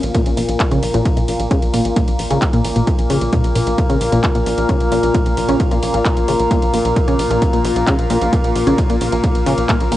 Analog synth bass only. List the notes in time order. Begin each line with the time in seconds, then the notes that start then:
0.03 A#1
0.26 A#1
0.37 A#1
0.49 A#1
0.71 A#1
0.83 A#1
0.94 A#1
1.17 A#1
1.28 A#1
1.40 A#1
1.62 A#1
1.74 A#1
1.85 A#1
2.08 A#1
2.19 A#1
2.31 A#1
2.53 A#1
2.65 A#1
2.76 A#1
2.99 A#1
3.10 A#1
3.21 A#1
3.44 A#1
3.55 A#1
3.67 A#1
3.89 A#1
4.01 A#1
4.12 A#1
4.35 A#1
4.46 A#1
4.58 A#1
4.80 A#1
4.92 A#1
5.03 A#1
5.26 A#1
5.37 A#1
5.49 A#1
5.71 A#1
5.83 A#1
5.94 A#1
6.17 A#1
6.28 A#1
6.40 A#1
6.62 A#1
6.74 A#1
6.85 A#1
7.08 A#1
7.19 A#1
7.30 A#1
7.53 A#1
7.65 A#1
7.76 A#1
7.99 A#1
8.10 A#1
8.21 A#1
8.44 A#1
8.55 A#1
8.67 A#1
8.90 A#1
9.01 A#1
9.12 A#1
9.35 A#1
9.46 A#1
9.58 A#1
9.81 A#1
9.92 A#1